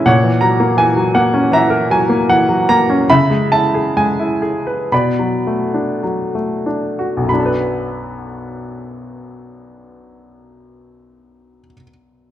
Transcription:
0.06 3.05 A#2 soft
0.06 1.49 C#5 soft
0.06 0.43 F#5 medium
0.23 0.75 E3 soft
0.41 0.94 F#3 soft
0.41 0.79 A#5 medium
0.60 1.13 A#3 soft
0.77 1.50 E3 soft
0.77 1.16 G#5 medium
0.96 1.89 F#3 soft
1.15 2.08 A#3 soft
1.15 1.53 F#5 medium
1.34 2.85 C#4 soft
1.51 2.28 E3 soft
1.51 3.05 E5 soft
1.51 1.92 A#5 medium
1.70 3.04 A#4 soft
1.90 2.47 F#3 soft
1.90 2.31 G#5 medium
2.09 2.68 A#3 soft
2.29 3.06 E3 soft
2.29 2.70 F#5 medium
2.49 3.07 F#3 soft
2.69 3.08 A#3 soft
2.69 3.10 A#5 medium
2.90 3.09 C#4 soft
3.10 4.89 C#3 soft
3.10 4.89 E5 soft
3.10 3.52 B5 medium
3.30 3.95 G#3 soft
3.52 4.18 E4 soft
3.52 3.97 A5 medium
3.74 4.41 G#4 soft
3.97 4.90 G#3 soft
3.97 4.96 G#5 medium
4.20 4.90 E4 soft
4.42 4.90 G#4 soft
4.67 4.91 B4 soft
4.92 7.26 B2 soft
4.92 7.27 D5 soft
4.92 6.00 B5 soft
5.19 6.01 F#3 soft
5.47 6.33 A3 soft
5.74 6.65 D4 soft
6.03 7.26 F#3 soft
6.35 7.27 A3 soft
6.66 7.28 D4 soft
6.99 7.30 F#4 soft
7.17 11.60 B1 soft
7.23 11.65 F#2 soft
7.29 11.71 F#3 soft
7.29 11.72 B5 soft
7.34 11.76 D4 soft
7.39 11.82 A4 soft
7.46 11.88 B4 soft

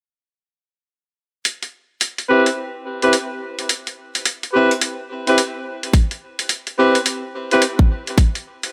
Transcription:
1.45 closed hi-hat medium
1.63 closed hi-hat soft
2.01 closed hi-hat medium
2.18 closed hi-hat soft
2.29 2.47 C4 medium
2.29 2.47 E4 medium
2.29 2.47 G4 medium
2.29 2.47 B4 medium
2.46 closed hi-hat soft
3.02 3.14 C4 medium
3.02 3.14 E4 medium
3.02 3.14 G4 medium
3.02 3.14 B4 medium
3.02 closed hi-hat soft
3.13 closed hi-hat medium
3.59 closed hi-hat soft
3.69 closed hi-hat medium
3.87 closed hi-hat soft
4.15 closed hi-hat soft
4.25 closed hi-hat medium
4.43 closed hi-hat soft
4.53 4.71 C4 medium
4.53 4.71 E4 medium
4.53 4.71 G4 medium
4.53 4.71 B4 medium
4.71 closed hi-hat soft
4.81 closed hi-hat medium
5.27 5.38 C4 medium
5.27 5.38 E4 medium
5.27 5.38 G4 medium
5.27 5.38 B4 medium
5.27 closed hi-hat soft
5.38 closed hi-hat medium
5.83 closed hi-hat soft
5.93 kick loud
5.93 closed hi-hat medium
6.11 closed hi-hat soft
6.39 closed hi-hat soft
6.49 closed hi-hat medium
6.67 closed hi-hat soft
6.78 6.96 C4 medium
6.78 6.96 E4 medium
6.78 6.96 G4 medium
6.78 6.96 B4 medium
6.95 closed hi-hat soft
7.06 closed hi-hat medium
7.51 7.63 C4 medium
7.51 7.63 E4 medium
7.51 7.63 G4 medium
7.51 7.63 B4 medium
7.51 closed hi-hat soft
7.62 closed hi-hat medium
7.79 kick loud
8.07 closed hi-hat soft
8.18 kick loud
8.18 closed hi-hat medium
8.35 closed hi-hat soft
8.63 closed hi-hat soft

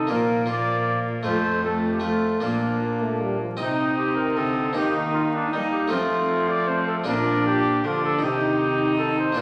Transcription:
0.00 0.12 C3 medium
0.00 0.12 D#4 medium
0.00 0.11 A4 medium
0.07 1.21 A#2 soft
0.07 1.28 A#2 medium
0.07 0.46 F3 medium
0.07 0.45 A#3 soft
0.07 0.48 A#3 medium
0.07 0.46 F4 soft
0.07 0.48 A#4 medium
0.46 1.09 F3 medium
0.46 1.22 A#3 soft
0.46 1.24 A#3 medium
0.46 1.22 F4 soft
0.50 0.98 D5 loud
1.23 2.38 F2 soft
1.23 2.42 F2 medium
1.23 1.63 F3 medium
1.23 1.99 A3 soft
1.23 1.64 A3 medium
1.23 2.00 F4 soft
1.23 1.61 C5 medium
1.64 2.03 F3 soft
1.64 2.01 A3 medium
1.64 1.77 A4 medium
1.93 2.01 G4 medium
2.00 2.41 F3 medium
2.00 2.39 A3 soft
2.00 2.41 A3 medium
2.00 2.40 F4 soft
2.00 2.41 F4 medium
2.40 3.37 A#2 soft
2.40 3.39 A#2 medium
2.40 2.77 F3 soft
2.40 3.56 A#3 soft
2.40 3.39 A#3 medium
2.40 3.38 D4 medium
2.40 3.56 F4 soft
2.82 3.03 A#3 medium
3.02 3.22 A3 medium
3.21 3.40 G3 medium
3.41 3.59 F3 soft
3.57 4.34 C3 medium
3.57 4.71 C4 medium
3.57 4.76 C4 medium
3.57 3.96 D#4 loud
3.57 4.72 D#4 medium
3.57 4.71 D#5 soft
3.61 4.40 C3 medium
3.97 4.15 G4 medium
4.15 4.38 A#4 medium
4.37 4.72 C3 medium
4.37 4.78 D3 medium
4.37 4.77 A4 medium
4.73 5.87 A#3 medium
4.73 5.52 A#3 medium
4.73 5.87 D#4 soft
4.73 5.52 D#4 medium
4.73 4.95 G4 loud
4.77 5.55 D#3 medium
4.77 5.50 D#3 medium
4.96 5.04 D#4 medium
5.13 5.22 F4 medium
5.33 5.50 D4 medium
5.51 5.88 G3 medium
5.51 5.93 G3 medium
5.51 5.92 A#3 medium
5.51 5.70 D#4 loud
5.51 5.94 D#4 medium
5.71 5.91 G4 medium
5.88 7.03 F3 medium
5.88 7.02 A3 medium
5.88 6.66 A3 medium
5.88 7.02 C4 medium
5.88 7.03 F4 soft
5.88 6.50 F4 loud
5.92 7.07 F3 medium
5.92 6.69 C4 medium
6.49 6.69 D5 loud
6.67 7.08 A3 medium
6.67 7.10 C4 medium
6.67 6.86 C5 medium
6.87 6.96 A4 medium
7.04 7.80 A#2 medium
7.04 7.66 F3 medium
7.04 8.17 A#3 medium
7.04 8.17 D4 medium
7.04 8.18 F4 medium
7.04 7.45 A#4 loud
7.08 7.86 A#2 medium
7.08 7.84 D4 medium
7.46 7.88 G4 loud
7.83 8.19 D3 medium
7.83 8.25 D3 medium
7.83 8.22 F3 medium
7.83 8.24 D4 medium
7.83 8.03 F4 loud
8.03 8.22 A4 loud
8.19 9.34 C3 medium
8.19 9.38 D#3 medium
8.19 9.32 D#4 medium
8.23 9.37 C3 medium
8.23 9.38 D#4 medium
8.23 8.97 G4 loud
8.97 9.17 A4 loud
9.19 9.41 C5 loud
9.32 9.41 A#2 medium
9.32 9.41 A#3 medium
9.32 9.41 D4 medium
9.32 9.41 F4 soft
9.37 9.41 A#2 medium
9.37 9.41 F3 medium
9.37 9.41 A#3 medium

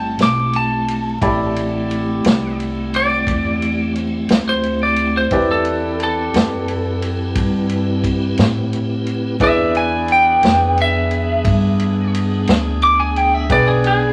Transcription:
0.00 0.16 G1 medium
0.00 1.18 A3 medium
0.00 1.18 C4 medium
0.00 1.18 E4 medium
0.00 1.18 G4 soft
0.00 1.18 G4 medium
0.00 1.18 D5 medium
0.00 0.20 A5 medium
0.00 1.18 B5 medium
0.18 1.18 B1 medium
0.18 snare medium
0.18 ride medium
0.23 0.54 D6 medium
0.53 2.56 A5 medium
0.53 ride medium
0.88 ride medium
1.21 2.21 A1 medium
1.21 5.28 A3 medium
1.21 5.27 C4 medium
1.21 5.27 E4 soft
1.21 5.28 E4 medium
1.21 5.27 G4 soft
1.21 5.28 G4 medium
1.21 5.28 D5 medium
1.21 5.28 B5 soft
1.21 kick medium
1.21 ride medium
1.56 ride medium
1.91 ride medium
2.24 3.24 C2 medium
2.24 snare loud
2.24 ride medium
2.60 ride medium
2.94 3.98 D5 medium
2.94 ride medium
3.27 4.26 E2 medium
3.27 kick medium
3.27 ride medium
3.62 ride medium
3.95 4.44 C5 medium
3.95 ride medium
4.29 5.28 D2 medium
4.29 snare loud
4.29 ride medium
4.49 4.81 C5 medium
4.63 ride soft
4.83 5.15 D5 medium
4.96 ride medium
5.17 5.49 C5 medium
5.31 6.30 E2 medium
5.31 9.37 C4 medium
5.31 9.37 E4 soft
5.31 9.37 E4 medium
5.31 9.37 G4 medium
5.31 9.37 G4 soft
5.31 9.37 B4 medium
5.31 9.37 B4 soft
5.31 9.37 D5 medium
5.31 kick medium
5.31 ride medium
5.51 5.99 A4 medium
5.65 ride medium
6.00 8.02 A4 medium
6.00 ride medium
6.34 7.33 F#2 medium
6.34 snare loud
6.34 ride medium
6.68 ride soft
7.02 ride medium
7.35 8.35 G2 medium
7.35 kick loud
7.35 ride medium
7.69 ride medium
8.04 kick medium
8.04 ride medium
8.37 9.38 A2 medium
8.37 snare medium
8.37 ride medium
8.73 ride soft
9.06 ride medium
9.39 10.40 E2 medium
9.39 13.46 B3 medium
9.39 13.46 D4 medium
9.39 14.13 D4 medium
9.39 13.46 E4 medium
9.39 13.46 G#4 medium
9.39 13.46 G#4 soft
9.39 14.13 G#4 medium
9.39 13.46 B4 soft
9.39 13.46 D5 medium
9.39 kick medium
9.39 ride medium
9.44 9.75 E5 loud
9.75 10.09 G#5 medium
9.75 ride soft
10.08 ride soft
10.12 10.77 G5 medium
10.42 11.42 F2 medium
10.42 snare loud
10.42 ride medium
10.77 ride soft
10.82 12.12 E5 loud
11.11 ride medium
11.45 12.45 G2 medium
11.45 kick loud
11.45 ride medium
11.79 ride medium
12.14 ride medium
12.47 13.47 D2 medium
12.47 snare medium
12.47 ride medium
12.82 12.99 D6 medium
12.82 ride medium
13.00 13.17 G#5 medium
13.16 13.34 G5 medium
13.16 ride medium
13.34 13.50 E5 medium
13.49 14.13 B1 medium
13.49 14.13 B3 medium
13.49 14.13 D4 medium
13.49 14.13 G#4 soft
13.49 14.13 B4 soft
13.49 14.13 D5 medium
13.49 13.68 D5 medium
13.49 14.13 G5 soft
13.49 kick loud
13.49 ride medium
13.68 13.84 G#4 medium
13.84 14.13 G#4 medium
13.84 ride medium

